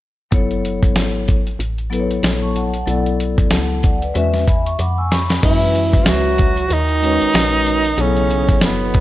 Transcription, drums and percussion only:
0.32 kick, closed hi-hat
0.51 closed hi-hat
0.65 closed hi-hat
0.83 kick, closed hi-hat
0.96 snare, closed hi-hat
1.28 kick, closed hi-hat
1.47 closed hi-hat
1.60 closed hi-hat
1.78 closed hi-hat
1.93 closed hi-hat
2.11 closed hi-hat
2.23 snare, closed hi-hat
2.56 closed hi-hat
2.74 closed hi-hat
2.87 closed hi-hat
3.06 closed hi-hat
3.20 closed hi-hat
3.38 kick, closed hi-hat
3.51 snare, closed hi-hat
3.83 kick, closed hi-hat
4.02 closed hi-hat
4.15 closed hi-hat
4.34 snare, closed hi-hat
4.48 kick, closed hi-hat
4.66 closed hi-hat
4.79 closed hi-hat
5.12 snare, closed hi-hat
5.29 snare, closed hi-hat
5.43 kick, closed hi-hat, crash
5.62 closed hi-hat
5.75 closed hi-hat
5.93 kick, closed hi-hat
6.06 snare, closed hi-hat
6.38 kick, closed hi-hat
6.57 closed hi-hat
6.70 closed hi-hat
6.89 closed hi-hat
7.03 closed hi-hat
7.21 closed hi-hat
7.34 snare, closed hi-hat
7.66 closed hi-hat
7.84 closed hi-hat
7.98 closed hi-hat
8.17 closed hi-hat
8.31 closed hi-hat
8.49 kick, closed hi-hat
8.61 snare, closed hi-hat
8.94 kick, closed hi-hat

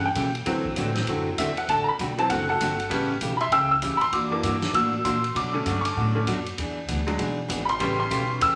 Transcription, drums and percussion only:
0.15 kick, hi-hat pedal, ride
0.35 ride
0.46 kick, ride
0.65 kick
0.76 kick, hi-hat pedal, ride
0.95 snare, ride
1.07 kick, ride
1.38 kick, hi-hat pedal, ride
1.57 ride
1.68 kick, ride
1.99 kick, hi-hat pedal, ride
2.18 ride
2.30 kick, ride
2.60 kick, hi-hat pedal, ride
2.80 ride
2.91 kick, ride
3.21 kick, hi-hat pedal, ride
3.40 ride
3.52 kick, ride
3.82 kick, hi-hat pedal, ride
4.01 ride
4.12 kick, ride
4.43 kick, hi-hat pedal, ride
4.62 snare, ride
4.74 kick, ride
5.04 kick, hi-hat pedal, ride
5.24 ride
5.35 kick, ride
5.66 kick, hi-hat pedal, ride
5.85 ride
5.96 kick
6.27 kick, hi-hat pedal, ride
6.46 ride
6.58 kick, ride
6.88 kick, hi-hat pedal, ride
7.07 ride
7.19 kick, ride
7.49 kick, hi-hat pedal, ride
7.69 ride
7.80 kick, ride
8.10 kick, hi-hat pedal, ride
8.41 kick, ride

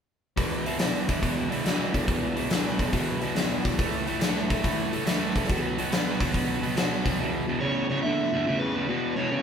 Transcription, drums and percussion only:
0.37 kick, open hi-hat
0.66 open hi-hat
0.79 snare, open hi-hat
1.09 kick, open hi-hat
1.23 kick, open hi-hat
1.52 open hi-hat
1.66 snare, open hi-hat
1.94 kick, open hi-hat
2.08 kick, open hi-hat
2.37 open hi-hat
2.50 snare, open hi-hat
2.79 kick, open hi-hat
2.93 kick, open hi-hat
3.22 open hi-hat
3.36 snare, open hi-hat
3.65 kick, open hi-hat
3.79 kick, open hi-hat
4.07 open hi-hat
4.21 snare, open hi-hat
4.50 kick, open hi-hat
4.64 kick, open hi-hat
4.93 open hi-hat
5.07 snare, open hi-hat
5.36 kick, open hi-hat
5.44 snare
5.50 kick, open hi-hat
5.78 open hi-hat
5.92 snare, open hi-hat
6.21 kick, open hi-hat
6.34 kick, open hi-hat
6.63 open hi-hat
6.77 snare, open hi-hat
7.06 kick, open hi-hat

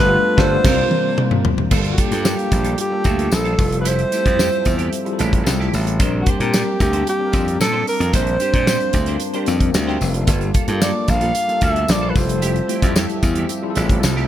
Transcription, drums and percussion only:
0.38 kick, snare
0.65 kick, snare, crash
0.91 high tom
1.18 mid tom
1.31 mid tom
1.45 floor tom
1.58 floor tom
1.71 kick, crash, tambourine
1.84 closed hi-hat
1.98 kick, closed hi-hat
2.12 snare, closed hi-hat
2.25 snare, tambourine
2.39 closed hi-hat
2.51 kick, closed hi-hat, tambourine
2.64 closed hi-hat
2.78 closed hi-hat
3.04 kick, closed hi-hat, tambourine
3.19 closed hi-hat
3.32 snare, tambourine
3.45 closed hi-hat
3.59 kick, snare, open hi-hat, tambourine
3.72 closed hi-hat
3.85 closed hi-hat, tambourine
3.99 closed hi-hat
4.12 closed hi-hat, tambourine
4.26 kick, snare, closed hi-hat
4.39 snare, tambourine
4.53 closed hi-hat
4.65 kick, closed hi-hat, tambourine
4.79 closed hi-hat
4.93 closed hi-hat
5.06 closed hi-hat
5.19 closed hi-hat, tambourine
5.33 kick, closed hi-hat
5.46 snare, tambourine
5.61 snare
5.73 open hi-hat, tambourine
5.87 closed hi-hat
6.00 kick, closed hi-hat, tambourine
6.26 kick, closed hi-hat
6.40 closed hi-hat
6.54 snare, tambourine
6.80 kick, closed hi-hat, tambourine
6.93 closed hi-hat
7.07 closed hi-hat, tambourine
7.33 kick, closed hi-hat, tambourine
7.48 closed hi-hat
7.61 snare, tambourine
7.87 open hi-hat, tambourine
8.01 closed hi-hat
8.13 kick, closed hi-hat, tambourine
8.27 closed hi-hat
8.40 closed hi-hat, tambourine
8.54 kick, closed hi-hat
8.67 snare, tambourine
8.80 closed hi-hat
8.93 kick, closed hi-hat, tambourine
9.06 closed hi-hat
9.20 closed hi-hat
9.34 closed hi-hat
9.46 closed hi-hat, tambourine
9.60 kick, closed hi-hat
9.74 snare, tambourine
9.88 snare
10.01 snare, open hi-hat, tambourine
10.14 closed hi-hat
10.27 kick, closed hi-hat, tambourine
10.41 closed hi-hat
10.54 kick, closed hi-hat, tambourine
10.68 closed hi-hat
10.82 snare, tambourine
11.08 kick, closed hi-hat, tambourine
11.21 closed hi-hat
11.35 closed hi-hat, tambourine
11.49 closed hi-hat
11.61 kick, closed hi-hat, tambourine
11.76 closed hi-hat
11.88 snare, tambourine
12.16 kick, snare, open hi-hat, tambourine
12.29 closed hi-hat
12.42 closed hi-hat, tambourine
12.56 closed hi-hat
12.69 closed hi-hat
12.82 kick, snare, closed hi-hat
12.96 snare, tambourine
13.09 closed hi-hat
13.23 kick, closed hi-hat, tambourine
13.35 closed hi-hat
13.49 closed hi-hat, tambourine
13.75 closed hi-hat, tambourine
13.89 kick, closed hi-hat
14.03 snare, tambourine
14.17 snare

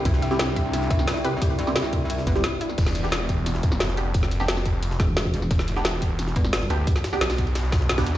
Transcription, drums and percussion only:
0.05 kick, closed hi-hat, ride
0.14 snare
0.22 closed hi-hat, ride
0.31 snare
0.39 snare, closed hi-hat, ride
0.56 kick, closed hi-hat, ride
0.73 snare, closed hi-hat, ride
0.82 snare
0.90 kick, closed hi-hat, ride
0.99 snare
1.07 snare, closed hi-hat, open hi-hat
1.16 snare
1.25 closed hi-hat, ride
1.42 kick, closed hi-hat, ride
1.59 closed hi-hat, ride
1.67 snare
1.76 snare, closed hi-hat, ride
1.84 snare
1.93 kick, closed hi-hat, ride
2.10 closed hi-hat, ride
2.18 snare
2.27 kick, closed hi-hat, ride
2.36 snare
2.44 snare, closed hi-hat, ride
2.61 closed hi-hat
2.69 snare
2.78 kick, closed hi-hat, crash, ride
2.86 snare
2.95 closed hi-hat, ride
3.04 snare
3.12 snare, closed hi-hat, ride
3.29 kick, closed hi-hat, ride
3.46 snare, closed hi-hat, ride
3.55 snare
3.63 kick, closed hi-hat, ride
3.72 snare
3.80 snare, closed hi-hat, open hi-hat
3.89 snare
3.97 closed hi-hat, ride
4.14 kick, closed hi-hat, ride
4.23 snare
4.31 closed hi-hat, ride
4.40 snare
4.48 snare, closed hi-hat, ride
4.57 snare
4.65 kick, closed hi-hat, ride
4.83 closed hi-hat, ride
4.91 snare
5.00 kick, snare, closed hi-hat, ride
5.17 snare, closed hi-hat, ride
5.25 kick
5.34 snare, closed hi-hat, ride
5.42 snare
5.51 kick, closed hi-hat, ride
5.59 snare
5.68 closed hi-hat, ride
5.76 snare
5.85 snare, closed hi-hat, ride
6.02 kick, closed hi-hat, ride
6.19 snare, closed hi-hat, ride
6.28 snare
6.36 kick, closed hi-hat, ride
6.44 snare
6.53 snare, closed hi-hat, open hi-hat
6.62 snare
6.70 closed hi-hat, ride
6.87 kick, closed hi-hat, ride
6.96 snare
7.04 snare, closed hi-hat, ride
7.13 snare
7.21 snare, closed hi-hat, ride
7.30 snare, ride
7.38 kick, snare, closed hi-hat
7.47 ride
7.55 snare, closed hi-hat, ride
7.64 snare
7.72 kick, snare, closed hi-hat, open hi-hat
7.81 snare
7.89 snare, closed hi-hat, ride
7.98 kick, snare, open hi-hat
8.06 snare, closed hi-hat

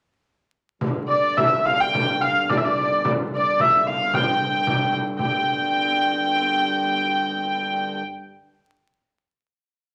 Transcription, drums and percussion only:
0.81 frame drum
1.37 frame drum
1.66 frame drum
1.94 frame drum
2.50 frame drum
2.78 frame drum
3.05 frame drum
3.59 frame drum
3.87 frame drum
4.13 frame drum
4.67 frame drum
4.93 frame drum
5.19 frame drum

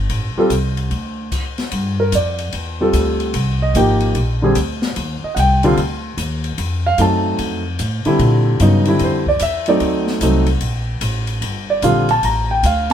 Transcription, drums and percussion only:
0.10 ride
0.50 hi-hat pedal, ride
0.77 ride
0.91 ride
1.32 kick, hi-hat pedal, crash, ride
1.58 snare, ride
1.71 ride
2.12 hi-hat pedal, ride
2.38 ride
2.52 ride
2.93 hi-hat pedal, ride
3.20 ride
3.34 ride
3.75 hi-hat pedal, ride
4.00 ride
4.15 ride
4.55 hi-hat pedal, ride
4.82 snare
4.96 ride
5.37 hi-hat pedal, ride
5.63 ride
5.77 ride
6.18 hi-hat pedal, ride
6.44 ride
6.58 ride
6.98 hi-hat pedal, ride
7.38 ride
7.79 hi-hat pedal, ride
8.05 ride
8.19 ride
8.60 hi-hat pedal, ride
8.85 ride
8.99 ride
9.26 kick
9.39 hi-hat pedal, ride
9.66 ride
9.80 ride
10.07 snare
10.21 hi-hat pedal, ride
10.46 ride
10.61 ride
11.01 hi-hat pedal, ride
11.27 ride
11.42 ride
11.82 hi-hat pedal, ride
12.09 ride
12.23 ride
12.63 hi-hat pedal, ride
12.90 ride

